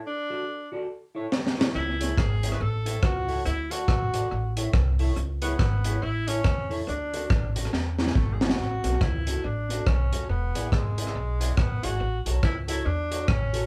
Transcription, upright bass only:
X:1
M:4/4
L:1/8
Q:"Swing" 1/4=140
K:A
V:1 name="Upright bass" clef=bass
z8 | C,,2 G,,,2 A,,,2 C,,2 | D,,2 A,,,2 A,,,2 =C,,2 | C,,2 G,,,2 A,,,2 E,,2 |
D,,2 A,,,2 E,,2 G,,,2 | A,,, B,,, C,,2 A,,,2 B,,, ^D,,, | E,,, A,,, G,,,2 B,,,2 A,,, G,,, | A,,, B,,, C,,2 E,,2 A,,,2 |]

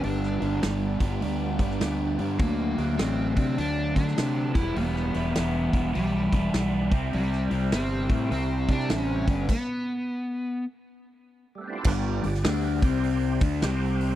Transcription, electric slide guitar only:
X:1
M:4/4
L:1/8
Q:"Swing" 1/4=102
K:G
V:1 name="Electric slide guitar"
D2 z6 | _B,2 C C D D2 E | B,4 G,3 z | G,2 C2 C D ^C2 |
B,4 z4 | z8 |]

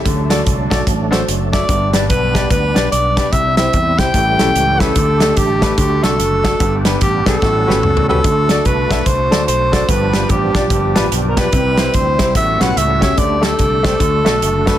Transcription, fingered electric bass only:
X:1
M:4/4
L:1/8
Q:"Swing" 1/4=146
K:G
V:1 name="Fingered electric bass" clef=bass
D,,2 C,, B,,, A,,,2 F,,,2 | G,,,2 B,,,2 D,, B,,, B,,,2 | C,,2 E,, C,, A,,, B,,, ^C,,2 | D,,2 A,,,2 D,, C,, F,,,2 |
G,,,2 A,,, B,,, A,,, G,,, ^C,,2 | D,,2 C,, B,,, C,, D,, B,,,2 | G,,,2 A,,, B,,, G,,, A,,, B,,,2 | C,,2 D,, C,, A,,, B,,, ^C,,2 |
D,,2 C,,2 D,, B,,, F,,,2 |]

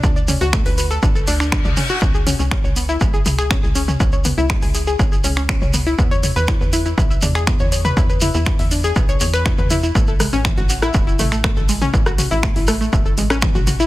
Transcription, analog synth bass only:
X:1
M:4/4
L:1/16
Q:1/4=121
K:C#phr
V:1 name="Analog synth bass" clef=bass
D,,3 D,,2 D,,3 A,,,2 D,,3 D,, z2 | C,,3 C,,2 C,,3 G,,,2 C,,3 C,,3 | C,,3 C,,2 C,,3 G,,,2 C,,3 C,,3 | E,,3 E,,2 E,,3 B,,,2 E,,3 E,,3 |
E,,3 E,,2 E,,3 B,,,2 E,,3 E,,3 | A,,,3 A,,,2 A,,,3 E,,,2 A,,,3 A,,,3 | A,,,3 A,,,2 A,,,3 E,,,2 A,,,3 A,,,3 |]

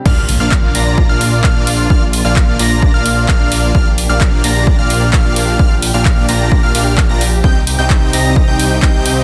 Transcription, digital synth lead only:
X:1
M:4/4
L:1/16
Q:1/4=130
K:Bb
V:1 name="Digital synth lead"
f' z2 f'3 b'3 f'3 f'4 | f' z2 f'3 b'3 f'3 f'4 | f' z2 f'3 b'3 f'3 f'4 | f' z2 f'3 b'3 f' f'3 b' z2 |
g' z2 g'3 b'3 g'3 g'4 |]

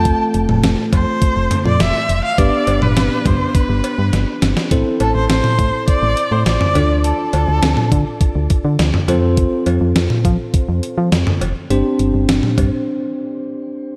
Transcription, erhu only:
X:1
M:4/4
L:1/16
Q:1/4=103
K:Flyd
V:1 name="Erhu"
a z4 z c4- c d e3 f | d3 B3 c2 B6 z2 | z2 A c c4 d3 c d4 | A8 z8 |
z16 | z16 |]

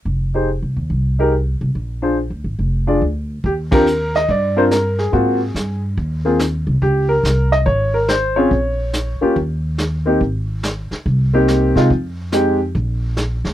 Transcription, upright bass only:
X:1
M:4/4
L:1/8
Q:"Swing" 1/4=142
K:Eb
V:1 name="Upright bass" clef=bass
F,,,2- (3F,,, C,, E,, C,,3 C,, | B,,,2- (3B,,, D,, A,,, F,,,2 D,,2 | E,,4 G,,4 | A,,2 G,,2 E,,3 C,, |
_D,,2 C,,2 A,,,4 | B,,,3 z E,,4 | A,,,3 z C,,3 C, | F,,4 B,,,3 D,, |]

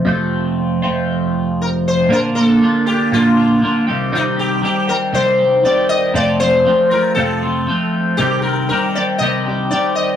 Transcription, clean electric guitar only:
X:1
M:4/4
L:1/8
Q:1/4=118
K:Cdor
V:1 name="Clean electric guitar"
[F,,C,F,A,CF]3 [F,,C,F,A,CF]4- [F,,C,F,A,CF] | [B,,D,B,DF] [B,DF] [D,B,DF] [B,DF] [B,,D,B,DF] [B,DF] [D,B,DF] [C,E,G,CG] | [C,E,G,CG] [G,CG] [E,G,CG] [G,CG] [C,E,G,CG] [G,CG] [E,G,CG]2 | [F,,C,F,A,CF] [F,A,CF] [F,A,CF] [F,A,CF] [F,,C,F,A,CF] [F,A,CF] [F,A,CF]2 |
[C,E,G,CG] [G,CG] [E,G,CG] [G,CG] [C,E,G,CG] [G,CG] [E,G,CG]2 |]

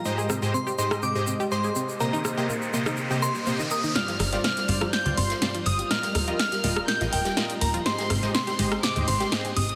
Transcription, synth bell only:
X:1
M:4/4
L:1/8
Q:1/4=123
K:Gphr
V:1 name="Synth bell"
b z c' c' d'2 c'2 | b4- b c'2 e' | f'2 f'2 g' c'2 e' | f'2 f'2 g' g2 b |
c'2 c'2 d' c'2 e' |]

